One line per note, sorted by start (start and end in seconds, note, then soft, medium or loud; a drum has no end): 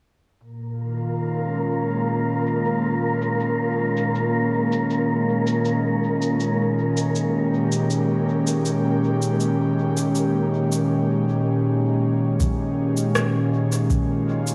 0.40 14.55 A#2 medium
0.40 10.90 A#3 medium
0.40 10.90 A#4 medium
0.40 cabasa soft
0.69 7.39 F4 medium
0.80 14.55 D#3 medium
0.97 cabasa soft
1.15 14.55 C#4 medium
1.15 cabasa soft
1.28 14.55 G#3 medium
1.72 cabasa soft
1.90 cabasa soft
2.47 cabasa soft
2.65 cabasa soft
3.22 cabasa soft
3.40 cabasa soft
3.97 cabasa medium
4.15 cabasa soft
4.72 cabasa soft
4.90 cabasa soft
5.47 cabasa soft
5.65 cabasa soft
6.22 cabasa soft
6.40 cabasa soft
6.97 cabasa soft
7.15 14.12 G4 medium
7.15 cabasa soft
7.72 cabasa soft
7.90 cabasa soft
8.47 cabasa soft
8.65 cabasa soft
9.22 cabasa soft
9.40 cabasa soft
9.97 cabasa soft
10.15 cabasa soft
10.72 cabasa soft
12.40 kick loud
12.40 cabasa soft
12.97 cabasa medium
13.15 cross-stick medium
13.15 cabasa soft
13.72 cabasa medium
13.90 kick medium
13.90 cabasa soft
13.95 14.55 F4 medium
14.47 cabasa medium